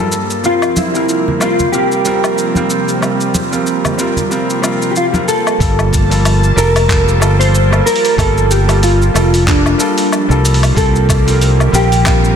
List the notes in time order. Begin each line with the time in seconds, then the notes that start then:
Already playing: G2 F3 G3 A#3 F4 A5
0.00 A4
0.12 shaker
0.30 shaker
0.43 C3 F3 G3 C4 F4 A#4, shaker
0.62 low woodblock, shaker
0.76 E4, high conga, shaker
0.94 F3 G3 C4 A#4, shaker
1.09 shaker
1.28 low conga
1.40 G3 C4 F4 A#4, low woodblock, shaker
1.59 high conga, low conga, shaker
1.72 G3 C4 F4 G4 A#4, shaker
1.92 shaker
2.05 G3 C4 F4 A#4, shaker
2.24 low woodblock, shaker
2.38 shaker
2.55 G3 C4 F4 A#4, high conga, shaker
2.70 shaker
2.88 shaker
3.01 G3 C4 F4 A#4, low woodblock, shaker
3.21 shaker
3.34 high conga, shaker
3.51 G3 C4 F4 A#4, shaker
3.67 shaker
3.85 low conga, low woodblock, shaker
3.97 G3 C4 F4 A#4, shaker
4.16 high conga, low conga, shaker
4.30 G3 C4 F4 A#4, shaker
4.50 shaker
4.62 G3 C4 F4 A#4, low woodblock, shaker
4.82 shaker
4.91 G4
4.96 F4, shaker
5.12 G3 C4 F4 A#4, high conga, shaker
5.28 A4, shaker
5.47 low woodblock, shaker
5.59 G1 F3 G3 A#3 F4 A4 A5, kick, open hi-hat, shaker
5.79 low woodblock, shaker
5.93 kick, open hi-hat, shaker
6.10 G3 A#3 F4 A4, open hi-hat, shaker
6.25 open hi-hat, low woodblock, shaker
6.43 shaker
6.56 F1 G3 A#3 F4 A4 A#4, open hi-hat, shaker
6.76 open hi-hat, low woodblock, shaker
6.88 G3 A#3 F4 A4, kick, clap, open hi-hat, shaker
7.08 shaker
7.20 G1 G3 A#3 F4 A4, low woodblock, shaker
7.40 C5, open hi-hat, shaker
7.55 shaker
7.70 G3 A#3 F4 A4, low woodblock, shaker
7.86 A#4, open hi-hat, shaker
7.96 open hi-hat
8.05 open hi-hat, shaker
8.17 G1 G3 A#3 F4 A4, kick, open hi-hat, low woodblock, shaker
8.38 shaker
8.51 G4, open hi-hat, shaker
8.68 G3 A#3 F4 A4, open hi-hat, low woodblock, shaker
8.83 F4, open hi-hat, shaker
9.02 shaker
9.14 F1 G3 A#3 F4 A4, open hi-hat, low woodblock, shaker
9.34 open hi-hat, shaker
9.46 G3 A#3 D4 F4 A4, kick, clap, open hi-hat, shaker
9.66 low woodblock, shaker
9.78 G3 A#3 F4 A4, shaker
9.98 open hi-hat, shaker
10.12 low woodblock, shaker
10.28 C2 G3 A#3 F4 A4, shaker
10.45 open hi-hat, shaker
10.54 open hi-hat
10.63 open hi-hat, low woodblock, shaker
10.75 C2 C3 G3 A#3 C4 F4 A4, kick, open hi-hat, shaker
10.95 shaker
11.09 kick, open hi-hat, low woodblock, shaker
11.26 G3 A#3 C4 F4, open hi-hat, shaker
11.42 open hi-hat, shaker
11.60 low woodblock, shaker
11.72 A#1 G3 C4 F4 G4 A#4, open hi-hat, shaker
11.92 open hi-hat, shaker
12.04 G3 C4 F4 A#4, kick, clap, open hi-hat, low woodblock, shaker
12.24 shaker